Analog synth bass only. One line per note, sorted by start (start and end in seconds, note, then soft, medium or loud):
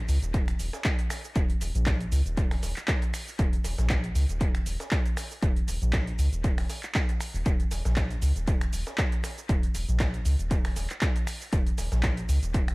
0.09 0.18 C#2 medium
0.22 0.54 D#1 medium
0.60 0.69 D#1 medium
1.36 1.54 D#1 loud
1.61 1.71 D#1 medium
1.75 2.06 A#1 medium
2.12 2.21 C#2 medium
2.26 2.57 D#1 medium
2.63 2.72 D#1 loud
3.39 3.57 D#1 loud
3.64 3.74 D#1 medium
3.78 4.09 A#1 medium
4.15 4.25 C#2 medium
4.29 4.60 D#1 medium
4.66 4.76 D#1 medium
5.43 5.61 D#1 loud
5.68 5.77 D#1 medium
5.82 6.13 A#1 medium
6.19 6.28 C#2 medium
6.33 6.64 D#1 medium
7.34 7.42 D#1 loud
7.46 7.64 D#1 loud
7.71 7.81 D#1 medium
7.85 8.16 A#1 medium
8.22 8.32 C#2 medium
8.36 8.67 D#1 medium
8.73 8.82 D#1 loud
9.49 9.67 D#1 loud
9.75 9.84 D#1 medium
9.89 10.20 A#1 medium
10.26 10.35 C#2 medium
10.39 10.71 D#1 medium
10.76 10.86 D#1 loud
11.53 11.71 D#1 loud
11.78 11.88 D#1 medium
11.92 12.23 A#1 medium
12.29 12.38 C#2 medium
12.43 12.74 D#1 medium